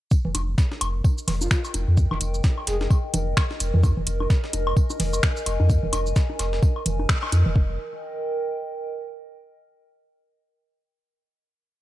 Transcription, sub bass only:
0.25 0.33 F1 loud
0.35 0.54 F1 loud
0.81 1.01 F1 medium
1.28 1.47 F1 medium
1.74 1.85 F1 loud
1.88 2.06 F2 medium
2.11 2.19 F1 loud
2.21 2.40 F1 loud
2.67 2.87 F1 medium
3.14 3.33 F1 medium
3.60 3.71 F1 loud
3.74 3.92 F2 medium
3.97 4.05 F1 loud
4.07 4.26 F1 loud
4.53 4.73 F1 medium
5.00 5.20 F1 medium
5.46 5.57 F1 loud
5.60 5.78 F2 medium
5.83 5.91 F1 loud
5.93 6.13 F1 loud
6.39 6.59 F1 medium
6.86 7.06 F1 medium
7.32 7.43 F2 medium
7.46 7.54 F1 medium
7.56 7.77 F1 loud

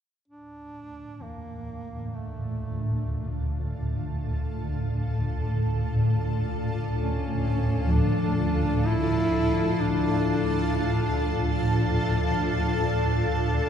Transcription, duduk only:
0.28 1.24 D4 loud
1.22 2.17 A#3 medium
2.16 3.59 A3 medium
6.94 7.92 C#4 medium
7.91 8.88 D4 medium
8.87 9.82 E4 loud
9.80 10.75 D4 medium
10.77 11.43 D4 medium

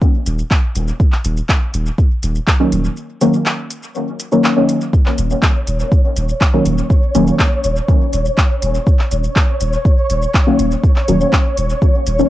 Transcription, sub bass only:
0.26 0.42 D#1 loud
0.75 0.91 D#1 medium
1.25 1.40 D#1 loud
1.74 1.89 D#1 medium
2.23 2.39 D#1 medium
2.72 2.88 D#1 medium
5.18 5.34 D#1 loud
5.67 5.83 D#1 medium
6.16 6.32 D#1 medium
6.66 6.81 D#1 medium
7.15 7.30 D#1 loud
7.64 7.80 D#1 medium
8.13 8.29 D#1 loud
8.62 8.78 D#1 medium
9.11 9.27 D#1 loud
9.61 9.76 D#1 medium
10.10 10.25 D#1 medium
10.59 10.75 D#1 medium
11.08 11.24 D#1 loud
11.57 11.73 D#1 medium
12.06 12.22 D#1 medium

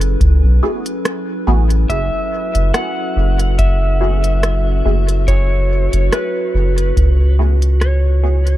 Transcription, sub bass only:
0.00 0.16 F#1 medium
0.21 0.41 C#2 loud
0.43 0.61 B1 medium
1.47 1.85 A1 loud
1.90 2.10 F#1 loud
2.55 2.72 F#1 medium
3.16 4.82 F#1 medium
4.86 5.88 F#1 medium
5.93 6.10 F#1 medium
6.54 6.92 F#1 medium
6.97 8.57 C#2 medium

